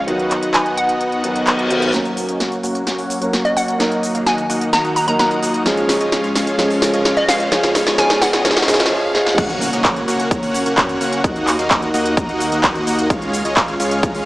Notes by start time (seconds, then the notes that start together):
Already playing: C#3 G#3
0.06 B1 D#3 F#3 B3 D#4 F#4 B4 D#5 F#5, closed hi-hat
0.19 closed hi-hat
0.31 clap, closed hi-hat
0.43 closed hi-hat
0.54 G#5, clap, closed hi-hat
0.66 closed hi-hat
0.77 F#5, closed hi-hat
0.89 closed hi-hat
1.01 closed hi-hat, reverse cymbal
1.12 closed hi-hat
1.24 D#3 F#3 B3 F#4, closed hi-hat
1.36 closed hi-hat
1.47 clap, closed hi-hat
1.59 closed hi-hat
1.70 D#3 F#3 B3 F#4, closed hi-hat
1.82 closed hi-hat
1.93 F#2 F#3 A#3 C#4 F#4 A#4 C#5 F#5, snare, closed hi-hat, riser, shaker
2.05 closed hi-hat, shaker
2.17 open hi-hat, shaker
2.29 A#3 C#4 F#4 C#5 D#5, closed hi-hat, shaker
2.40 A#3 C#4 F#4 C#5 F#5, snare, closed hi-hat, shaker
2.52 closed hi-hat, shaker
2.63 A#3 C#4 F#4 C#5 F#5, open hi-hat, shaker
2.75 closed hi-hat, shaker
2.87 A#3 C#4 F#4 C#5 A#5, snare, closed hi-hat, shaker
2.98 A#3 C#4 F#4 C#5 F#5, open hi-hat, shaker
3.10 open hi-hat, shaker
3.21 F#3 A#3 C#4 F#4 A#4 C#5 F#5, closed hi-hat, shaker
3.33 A#3 C#4 F#4 C#5 F#5, snare, closed hi-hat, shaker
3.45 D#5, closed hi-hat, shaker
3.56 A#3 C#4 F#4 C#5 F#5, open hi-hat, shaker
3.68 closed hi-hat, shaker
3.79 D#2 D#3 F#3 A#3 D#4 F#4 A#4 D#5 F#5, snare, closed hi-hat, shaker
3.92 closed hi-hat, shaker
4.03 open hi-hat, shaker
4.15 A#3 D#4 F#4 D#5 F5, closed hi-hat, shaker
4.26 A#3 D#4 F#4 D#5 F#5 G#5, snare, closed hi-hat, shaker
4.38 closed hi-hat, shaker
4.50 A#3 D#4 F#4 D#5 F#5, open hi-hat, shaker
4.61 closed hi-hat, shaker
4.73 A#3 D#4 F#4 D#5 A#5, snare, closed hi-hat, shaker
4.85 A#3 D#4 F#4 D#5 F#5, closed hi-hat, shaker
4.96 A#5, open hi-hat, shaker
5.07 F#3 A#3 D#4 F#4 A#4 D#5 F#5 A#5, closed hi-hat, shaker
5.19 A#3 D#4 F#4 D#5 F#5 A#5, snare, closed hi-hat, shaker
5.31 closed hi-hat, shaker
5.42 A#3 D#4 F#4 D#5 F#5, open hi-hat, shaker
5.54 closed hi-hat, shaker
5.65 C#3 F3 G#3 C#4 F4 G#4 C#5 F5, snare, closed hi-hat, shaker
5.77 closed hi-hat, shaker
5.89 snare, open hi-hat, shaker
6.01 G#3 C#4 F4 C#5 D#5, closed hi-hat, shaker
6.12 G#3 C#4 F4 C#5 F5, snare, closed hi-hat, shaker
6.24 closed hi-hat, shaker
6.35 G#3 C#4 F4 C#5 F5, snare, open hi-hat, shaker
6.47 closed hi-hat, shaker
6.58 F3 G#3 C#4 F4 G#4 C#5 F5, snare, closed hi-hat, shaker
6.70 open hi-hat, shaker
6.82 snare, open hi-hat, shaker
6.94 G#3 C#4 F4 C#5 D#5, closed hi-hat, shaker
7.05 G#3 C#4 F4 C#5 F5, snare, closed hi-hat, shaker
7.17 D#5, closed hi-hat, shaker
7.28 G#3 C#4 F4 C#5 F5, snare, open hi-hat, shaker
7.40 closed hi-hat, shaker
7.51 B2 F3 G#3 C#4 D#4 F4 G#4 B4 C#5 F5, snare, closed hi-hat, shaker
7.63 snare, closed hi-hat, shaker
7.75 snare, open hi-hat, shaker
7.87 G#3 C#4 F4 C#5 D#5, snare, closed hi-hat, shaker
7.97 F3 G#3 C#4 F4 G#4 C#5 F5 G#5, snare, closed hi-hat, shaker
8.10 snare, closed hi-hat, shaker
8.22 F#5, snare, open hi-hat, shaker
8.33 G#3 C#4 F4 C#5 D#5, snare, closed hi-hat, shaker
8.44 F3 G#3 C#4 F4 G#4 C#5 F5, snare, closed hi-hat, shaker
8.51 snare
8.57 snare, closed hi-hat, shaker
8.62 snare
8.67 F3 G#3 C#4 F4 G#4 C#5 F5, snare, open hi-hat, shaker
8.74 snare
8.80 snare, closed hi-hat, shaker
8.86 snare
8.90 F3 G#3 C#4 G#4
9.13 F3 G#3 C#4 G#4, snare
9.26 snare
9.38 F#1 A#3 C#4 F#4 C#5 F#5, kick, closed hi-hat, crash, impact, shaker
9.50 closed hi-hat, shaker
9.61 open hi-hat, shaker
9.73 F#1 A#3 C#4 F#4 C#5 D#5, closed hi-hat, shaker
9.84 F#1 A#3 C#4 F#4 C#5 F#5, kick, clap, closed hi-hat, shaker
9.96 closed hi-hat, shaker
10.08 F#1 A#3 C#4 F#4 C#5 F#5, open hi-hat, shaker
10.20 closed hi-hat, shaker
10.31 F#1 A#3 C#4 F#4 C#5 A#5, kick, closed hi-hat, shaker
10.43 F#1 A#3 C#4 F#4 C#5 F#5, open hi-hat, shaker
10.54 open hi-hat, shaker
10.66 F#1 A#3 C#4 F#4 C#5 F#5, closed hi-hat, shaker
10.77 F#2 A#3 C#4 F#4 C#5 F#5, kick, clap, closed hi-hat, shaker
10.89 closed hi-hat, shaker
11.01 F#1 A#3 C#4 F#4 C#5 F#5, open hi-hat, shaker
11.13 closed hi-hat, shaker
11.24 D#2 D#3 A#3 D#4 F#4 A#4 D#5 F#5, kick, closed hi-hat, shaker
11.36 closed hi-hat, shaker
11.47 clap, open hi-hat, shaker
11.59 D#2 A#3 D#4 F#4 D#5 F5, closed hi-hat, shaker
11.70 D#2 A#3 D#4 F#4 D#5 F#5, kick, clap, closed hi-hat, shaker
11.82 closed hi-hat, shaker
11.94 D#2 A#3 D#4 F#4 D#5 F#5, open hi-hat, shaker
12.06 closed hi-hat, shaker
12.17 D#2 A#3 D#4 F#4 D#5 A#5, kick, closed hi-hat, shaker
12.29 D#2 A#3 D#4 F#4 D#5 F#5, closed hi-hat, shaker
12.40 open hi-hat, shaker
12.52 D#2 A#3 D#4 F#4 D#5 F#5, closed hi-hat, shaker
12.63 D#2 A#3 D#4 F#4 D#5 F#5, kick, clap, closed hi-hat, shaker
12.75 closed hi-hat, shaker
12.87 D#2 A#3 D#4 F#4 D#5 F#5, open hi-hat, shaker
12.99 closed hi-hat, shaker
13.10 C#2 C#3 G#3 C#4 F4 G#4 C#5 F5, kick, closed hi-hat, shaker
13.22 closed hi-hat, shaker
13.33 open hi-hat, shaker
13.45 C#2 G#3 C#4 F4 C#5 D#5, closed hi-hat, shaker
13.56 C#2 G#3 C#4 F4 C#5 F5, kick, clap, closed hi-hat, shaker
13.68 closed hi-hat, shaker
13.80 C#2 G#3 C#4 F4 C#5 F5, open hi-hat, shaker
13.91 closed hi-hat, shaker
14.03 C#2 G#3 C#4 F4 C#5 A#5, kick, closed hi-hat, shaker
14.15 C#2 G#3 C#4 F4 C#5 F5, open hi-hat, shaker